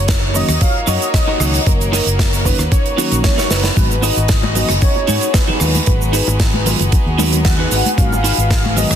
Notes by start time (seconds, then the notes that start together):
Already playing: F#1 A#3 D#4 F#4 C#5
0.08 muted clean electric guitar stroke, kick, snare, closed hi-hat, shaker
0.34 D#3 F#3 A#3 C#4 F#4 D#5, muted clean electric guitar stroke, open hi-hat, shaker
0.48 D#2, muted clean electric guitar stroke, cross-stick, closed hi-hat, shaker
0.61 F5, muted clean electric guitar stroke, kick, closed hi-hat, shaker
0.87 F#2 D#4 F#4 A#4 C#5 D#5, open hi-hat, shaker
1.02 closed hi-hat, shaker
1.14 kick, cross-stick, snare, closed hi-hat, shaker
1.27 D#4 F#4 A#4 C#5
1.39 C#2 D#3 F#3 A#3 C#4 D#4, cross-stick, open hi-hat, shaker
1.54 closed hi-hat, shaker
1.66 F#1 D#3 F#3 A#3 C#4 F#4 A#4, kick, closed hi-hat, shaker
1.81 closed hi-hat, shaker
1.92 D#4 F#4 A#4 D#5, snare, open hi-hat, shaker
2.06 F#1, closed hi-hat, shaker
2.19 muted clean electric guitar stroke, kick, snare, closed hi-hat, shaker
2.33 closed hi-hat, shaker
2.45 D#3 F#3 A#3 C#4 D#4 B4, muted clean electric guitar stroke, kick, open hi-hat, shaker
2.58 D#2, muted clean electric guitar stroke, cross-stick, closed hi-hat, shaker
2.71 C#5, muted clean electric guitar stroke, kick, closed hi-hat, shaker
2.86 closed hi-hat
2.97 D#3 F#3 A#3 C#4 D#4 F#4 A#4 C#5, open hi-hat, shaker
3.11 A#1 D#3 F#3 A#3 C#4 F#4, closed hi-hat, shaker
3.24 kick, snare, closed hi-hat, shaker
3.37 D#4 F#4 A#4 C#5, snare, closed hi-hat, shaker
3.50 F#1 B4, snare, open hi-hat, shaker
3.64 snare, closed hi-hat, shaker
3.76 G#1 D#3 F#3 G#3 B3 F#4, kick, closed hi-hat, shaker
3.91 shaker
4.02 D#4 F#4 G#4 B4 D#5, open hi-hat, high bongo, shaker
4.16 G#1, closed hi-hat, shaker
4.28 muted clean electric guitar stroke, kick, snare, closed hi-hat, shaker
4.43 high bongo, high conga, shaker
4.55 D#3 F#3 G#3 B3 F#4, muted clean electric guitar stroke, open hi-hat, low conga, shaker
4.69 F#1, muted clean electric guitar stroke, cross-stick, closed hi-hat, shaker
4.82 C#5, muted clean electric guitar stroke, kick, closed hi-hat, shaker
4.96 high bongo, shaker
5.07 G#2 D#4 F#4 G#4 C#5, open hi-hat, high conga, shaker
5.21 closed hi-hat, shaker
5.34 B4, kick, cross-stick, snare, closed hi-hat, high bongo, shaker
5.48 D#4 F#4 G#4 B4, low conga, shaker
5.60 D#2 D#3 F#3 G#3 B3 F4, cross-stick, open hi-hat, shaker
5.75 closed hi-hat, high conga, shaker
5.86 G#1 D#3 F#3 G#3 B3 F#4 B4, kick, closed hi-hat, high bongo, shaker
6.01 shaker
6.13 D#4 F#4 G#4 B4, open hi-hat, shaker
6.27 G#1, closed hi-hat, high bongo, shaker
6.40 muted clean electric guitar stroke, kick, snare, closed hi-hat, shaker
6.54 high conga, shaker
6.66 D#3 F#3 G#3 B3 F4, muted clean electric guitar stroke, open hi-hat, low conga, shaker
6.79 F#1, muted clean electric guitar stroke, closed hi-hat, high bongo, shaker
6.92 muted clean electric guitar stroke, kick, closed hi-hat, shaker
7.06 D#2, shaker
7.18 D#3 F#3 G#3 B3 D#4 F#4 G#4 A#4, open hi-hat, high bongo, high conga, shaker
7.32 D#3 F#3 G#3 B3 F#4, closed hi-hat, shaker
7.45 F#5, kick, snare, closed hi-hat, shaker
7.58 D#4 F#4 G#4 B4, shaker
7.71 G#1, open hi-hat, high bongo, shaker
7.86 closed hi-hat, high conga, shaker
7.97 G#1 D#3 F#3 G#3 B3 F#4 F5, kick, closed hi-hat, shaker
8.12 high bongo, shaker
8.24 D#4 F#4 G#4 B4, open hi-hat, shaker
8.37 G#1, closed hi-hat, shaker
8.50 muted clean electric guitar stroke, kick, snare, closed hi-hat, shaker
8.65 high bongo, high conga, shaker
8.76 D#3 F#3 G#3 B3 F#4 D#5, muted clean electric guitar stroke, open hi-hat, low conga, shaker
8.90 F#1, muted clean electric guitar stroke, cross-stick, closed hi-hat, shaker